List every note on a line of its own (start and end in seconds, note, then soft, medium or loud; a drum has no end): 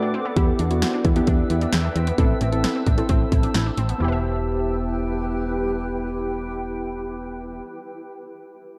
0.00 0.14 A3 loud
0.00 0.18 A3 medium
0.00 0.18 D4 medium
0.00 0.12 D4 medium
0.00 0.18 F#4 medium
0.00 0.34 D5 medium
0.00 0.34 D6 medium
0.14 0.24 C4 medium
0.25 0.35 B3 medium
0.36 0.52 E2 loud
0.36 0.59 B3 medium
0.36 0.59 E4 medium
0.36 0.56 E4 loud
0.36 0.59 G4 loud
0.36 2.17 B4 medium
0.36 3.97 E5 medium
0.36 2.17 G5 medium
0.36 3.97 E6 medium
0.36 kick loud
0.36 closed hi-hat medium
0.59 0.83 E2 medium
0.59 0.79 D4 medium
0.59 closed hi-hat medium
0.71 1.01 B3 medium
0.71 1.01 E4 medium
0.71 1.01 F#4 medium
0.71 closed hi-hat soft
0.82 0.92 C4 medium
0.82 snare loud
0.82 closed hi-hat medium
0.93 1.03 D4 medium
1.05 1.21 E2 loud
1.05 1.15 E4 medium
1.05 kick medium
1.05 closed hi-hat medium
1.16 1.76 B3 medium
1.16 1.26 D4 medium
1.16 1.76 E4 medium
1.16 1.76 G4 loud
1.16 closed hi-hat medium
1.27 1.43 E2 loud
1.27 1.47 D4 medium
1.27 kick medium
1.27 closed hi-hat medium
1.50 1.66 E2 medium
1.50 1.60 E4 medium
1.50 closed hi-hat medium
1.61 1.71 D4 medium
1.61 closed hi-hat medium
1.73 1.89 E2 loud
1.73 1.83 E4 medium
1.73 snare loud
1.73 closed hi-hat medium
1.84 1.94 D4 medium
1.96 2.11 E2 loud
1.96 2.06 C4 medium
1.96 closed hi-hat medium
2.07 2.17 B3 medium
2.07 closed hi-hat medium
2.18 2.34 A1 loud
2.18 2.41 C4 medium
2.18 2.38 D4 medium
2.18 2.41 E4 medium
2.18 2.41 A4 medium
2.18 3.98 C5 medium
2.18 3.98 A5 medium
2.18 kick loud
2.18 closed hi-hat medium
2.41 2.65 A1 loud
2.41 2.61 C4 medium
2.41 closed hi-hat medium
2.52 2.82 C4 medium
2.52 2.82 E4 medium
2.52 2.82 A4 medium
2.52 closed hi-hat soft
2.64 2.74 B3 medium
2.64 snare loud
2.64 closed hi-hat medium
2.76 2.85 C4 medium
2.86 3.02 A1 loud
2.86 2.96 D4 medium
2.86 kick medium
2.86 closed hi-hat medium
2.98 3.58 C4 medium
2.98 3.08 C4 medium
2.98 3.58 E4 medium
2.98 3.58 A4 medium
2.98 closed hi-hat medium
3.09 3.25 A1 medium
3.09 3.29 C4 medium
3.09 kick medium
3.09 closed hi-hat medium
3.32 3.48 A1 loud
3.32 3.42 E4 medium
3.32 kick medium
3.32 closed hi-hat medium
3.43 3.53 D4 medium
3.43 closed hi-hat medium
3.54 3.71 A1 loud
3.54 3.65 E4 medium
3.54 snare loud
3.54 closed hi-hat medium
3.66 3.76 D4 medium
3.77 3.93 A1 medium
3.77 3.87 C4 medium
3.77 closed hi-hat medium
3.89 3.99 B3 medium
3.89 closed hi-hat medium
3.98 7.62 E1 medium
3.98 7.60 B3 medium
3.98 7.62 E4 medium
3.98 7.62 G4 medium
3.98 7.62 B4 medium
3.98 7.62 G5 medium
4.02 7.64 G4 medium
4.02 7.66 G4 medium
4.08 7.70 B4 medium
4.12 7.74 E5 medium